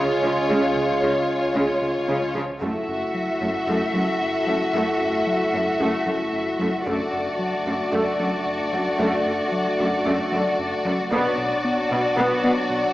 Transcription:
Already playing: sub bass C#2, analog synth bass C#3, trombone section C#3 G#3, french horn section C#4 F4, violin section F4 C#5
0.23 double bass section C#2, cello section C#3, analog synth bass C#3, viola section F3
0.49 double bass section C#2, analog synth bass C#2, cello section C#3, viola section G#3
0.76 analog synth bass C#3
1.02 double bass section C#2, analog synth bass C#2, viola section C#3, cello section C#3
1.29 analog synth bass C#2
1.55 double bass section C#2, analog synth bass C#2, cello section C#3, viola section G#3
1.82 analog synth bass C#3
2.08 double bass section C#2, viola section C#3, analog synth bass C#3, cello section C#3
2.35 double bass section C#2, analog synth bass C#3, cello section C#3, viola section F3
2.60 sub bass F#1, analog synth bass F#2, cello section F#2, french horn section A3 E4, viola section A3, violin section F#4 E5, taiko
2.88 analog synth bass F#2
3.14 analog synth bass F#3
3.41 cello section F#2, analog synth bass F#2, viola section A3
3.67 analog synth bass F#2, cello section F#2, viola section A3
3.93 cello section F#2, analog synth bass F#3, viola section A3
4.20 analog synth bass F#2
4.47 cello section F#2, analog synth bass F#3, viola section A3
4.73 analog synth bass F#2, cello section F#2, viola section A3
5.00 analog synth bass F#2
5.27 analog synth bass F#3
5.53 analog synth bass F#2, cello section F#2, viola section A3
5.80 analog synth bass F#2, cello section F#2, viola section A3
6.06 cello section F#2, analog synth bass F#3, viola section A3
6.33 analog synth bass F#2
6.59 cello section F#2, analog synth bass F#3, viola section A3
6.85 sub bass F#1, analog synth bass F#2, cello section F#2, viola section A3, french horn section A3 D4, violin section F#4 D5, taiko
7.13 analog synth bass F#2
7.39 analog synth bass F#3
7.66 analog synth bass F#2, cello section F#2, viola section A3, taiko
7.93 cello section F#2, analog synth bass F#2, viola section A3
8.19 cello section F#2, analog synth bass F#3, viola section A3
8.46 analog synth bass F#2
8.73 cello section F#2, analog synth bass F#3, viola section A3
8.99 analog synth bass F#2, cello section F#2, viola section A3
9.25 analog synth bass F#2
9.52 analog synth bass F#3
9.79 analog synth bass F#2, cello section F#2, viola section A3
10.06 analog synth bass F#2, cello section F#2, viola section A3
10.32 cello section F#2, analog synth bass F#3, viola section A3
10.58 analog synth bass F#2
10.85 cello section F#2, analog synth bass F#3, viola section A3
11.11 sub bass B1, analog synth bass B2, cello section B2, french horn section F#3 D4, viola section B3, violin section F#4 D5, taiko
11.38 analog synth bass B2
11.64 analog synth bass B3
11.91 analog synth bass B2, cello section B2, viola section B3
12.17 cello section B2, analog synth bass B2, viola section B3
12.44 cello section B2, viola section B3, analog synth bass B3
12.70 analog synth bass B2

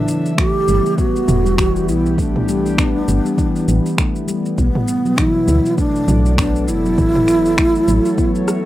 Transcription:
Already playing: analog synth pad C#3 E3 A4 E5, ney D4
0.08 shaker
0.26 shaker
0.32 analog synth pad B3
0.38 handpan A3, ney G4, finger snap, kick, shaker
0.68 fm bass G1, handpan G3, shaker
0.86 shaker
0.98 handpan B3, ney F#4, kick, shaker
1.08 analog synth pad G4
1.16 shaker
1.28 fm bass E1, mid tom, shaker
1.45 handpan G3, shaker
1.58 handpan E3, finger snap, kick, shaker
1.76 shaker
1.88 fm bass B1, ney E4, shaker
2.06 shaker
2.18 handpan A3, ney D4, kick, shaker
2.36 mid tom
2.48 handpan G3, shaker
2.66 shaker
2.78 handpan B3, finger snap, kick, shaker
3.08 fm bass G1, shaker
3.25 handpan G3, shaker
3.38 handpan E3, kick, shaker
3.56 shaker
3.68 fm bass A1, shaker
3.86 shaker
3.97 handpan A3, finger snap, kick, shaker
4.16 shaker
4.28 handpan G3, shaker
4.46 shaker
4.58 fm bass B1, analog synth pad B2, handpan B3, ney B3, kick, shaker
4.75 mid tom
4.88 shaker
5.05 handpan F#3, shaker
5.18 handpan E3, ney D#4, finger snap, kick, shaker
5.29 ney E4
5.48 fm bass D2, shaker
5.66 analog synth pad A4 D5, shaker
5.78 handpan A3, ney D4, kick, shaker
5.96 shaker
6.08 fm bass B1, handpan F#3, mid tom, shaker
6.26 shaker
6.38 handpan B3, ney D4, finger snap, kick, shaker
6.56 shaker
6.68 fm bass F#1, ney E4, shaker
6.85 handpan F#3, shaker
6.98 handpan E3, analog synth pad F#3, kick, mid tom, shaker
7.15 mid tom
7.28 finger snap, shaker
7.33 analog synth pad C#5
7.45 shaker
7.58 handpan A3, finger snap, kick, shaker
7.75 shaker
7.88 fm bass A1, handpan F#3, shaker
8.05 analog synth pad E5, shaker
8.18 handpan B3, kick, shaker
8.35 shaker
8.48 cross-stick, shaker

